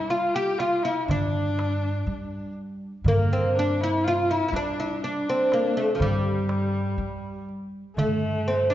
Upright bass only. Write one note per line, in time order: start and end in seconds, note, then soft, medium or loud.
0.00 0.86 G3 medium
1.08 1.93 G2 medium
2.07 2.91 G3 medium
3.04 4.31 G2 medium
4.52 5.79 G3 medium
6.00 6.84 G2 medium
6.98 7.82 G3 medium
7.97 8.74 G2 medium